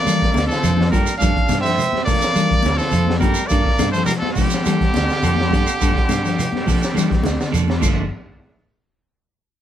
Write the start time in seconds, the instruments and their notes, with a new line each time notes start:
Already playing: trombone A#3, trumpet D5
0.05 clean electric guitar E3 F3 A#3 A4, fingered electric bass G3, muted clean electric guitar stroke, closed hi-hat, high conga, claves, shekere
0.22 kick, snare, closed hi-hat
0.34 fingered electric bass D2, closed hi-hat, high conga, shekere
0.38 snare
0.47 clean electric guitar D3, trombone F3, trumpet A4, shekere
0.51 snare, closed hi-hat
0.63 fingered electric bass F2, clean electric guitar F3 A#3 D4 A4, closed hi-hat, claves, shekere
0.77 clean electric guitar F3, snare, high conga
0.91 fingered electric bass G2, clean electric guitar F3 A#3 D4 A4, trombone G3, trumpet A#4, kick, closed hi-hat, low conga, shekere
1.06 closed hi-hat, claves, shekere
1.17 clean electric guitar F3 G3 A#3, trombone D4, trumpet F5, low conga, shekere
1.22 fingered electric bass G2, clean electric guitar D4 A4, kick, closed hi-hat
1.37 kick, closed hi-hat
1.49 fingered electric bass G2, snare, closed hi-hat, high conga, claves, shekere
1.61 clean electric guitar F3, trombone C4, trumpet E5
1.65 clean electric guitar A#3 D4 A4, snare, closed hi-hat, shekere
1.77 closed hi-hat, low conga, claves, shekere
1.93 clean electric guitar G3, snare, high conga
2.05 clean electric guitar F3 A#3 D4 A4, trombone A#3, trumpet D5, kick, open hi-hat, low conga, shekere
2.09 snare
2.22 snare, closed hi-hat, shekere
2.35 clean electric guitar E3 F3 A#3 D4 A4, fingered electric bass G3, closed hi-hat, high conga, claves, shekere
2.51 kick, closed hi-hat
2.63 fingered electric bass D2, snare, closed hi-hat, high conga, shekere
2.75 clean electric guitar D3, trombone F3, trumpet A4, shekere
2.81 snare
2.91 fingered electric bass F2, clean electric guitar F3 A#3 D4 A4, closed hi-hat, claves, shekere
3.07 clean electric guitar F3, snare, high conga
3.19 fingered electric bass G2, clean electric guitar F3 A#3 D4 A4, trombone G3, trumpet A#4, kick, closed hi-hat, high conga, low conga, shekere
3.34 claves, shekere
3.47 clean electric guitar F3 G3 A#3, trombone A#3, trumpet D5, kick, shekere
3.51 fingered electric bass G2, clean electric guitar D4 A4, closed hi-hat
3.66 kick, snare
3.79 fingered electric bass G2, snare, closed hi-hat, high conga, claves, shekere
3.91 clean electric guitar F3 A#3 D4 A4, trombone A3, trumpet C5, closed hi-hat, shekere
3.96 snare
4.05 trombone G3, trumpet A#4, low conga, claves, shekere
4.10 snare, closed hi-hat
4.19 trombone F3, trumpet A4, high conga
4.23 clean electric guitar G3, snare
4.32 trombone D3, trumpet G4, shekere
4.37 clean electric guitar F3 A#3 D4 A4, kick, snare, open hi-hat, low conga
4.50 snare, closed hi-hat, shekere
4.65 clean electric guitar E3 F3 A#3 D4 A4, fingered electric bass G3, snare, closed hi-hat, high conga, claves, shekere
4.81 kick, snare, closed hi-hat
4.94 fingered electric bass D2, snare, closed hi-hat, high conga, shekere
5.09 clean electric guitar D3, snare, closed hi-hat, shekere
5.22 fingered electric bass F2, clean electric guitar F3 A#3 D4 A4, closed hi-hat, high conga, claves, shekere
5.36 clean electric guitar F3, high conga
5.41 snare
5.51 fingered electric bass G2, clean electric guitar A#3 D4 A4, kick, closed hi-hat, high conga, low conga, shekere
5.67 closed hi-hat, claves, shekere
5.81 fingered electric bass G2, clean electric guitar F3 G3 A#3 D4 A4, kick, snare, closed hi-hat, shekere
5.96 kick, snare, closed hi-hat
6.08 fingered electric bass G2, snare, closed hi-hat, high conga, claves, shekere
6.23 clean electric guitar F3 D4 A4, muted clean electric guitar stroke, closed hi-hat, shekere
6.27 snare
6.39 closed hi-hat, low conga, claves, shekere
6.52 clean electric guitar G3, snare, high conga
6.66 clean electric guitar F3 A#3 D4 A4, kick, snare, open hi-hat, low conga, shekere
6.83 snare, closed hi-hat, shekere
6.94 clean electric guitar E3 F3 A#3 D4 A4, fingered electric bass G3, snare, closed hi-hat, high conga, claves, shekere
7.11 kick, snare, closed hi-hat
7.23 fingered electric bass D2, snare, closed hi-hat, high conga, shekere
7.38 clean electric guitar D3, snare, shekere
7.51 fingered electric bass F2, clean electric guitar F3 A#3 D4 A4, closed hi-hat, claves, shekere
7.68 clean electric guitar F3, snare, high conga
7.79 clean electric guitar G2 F3 A#3 D4 A4, kick, crash, low conga, claves, shekere
7.84 fingered electric bass G1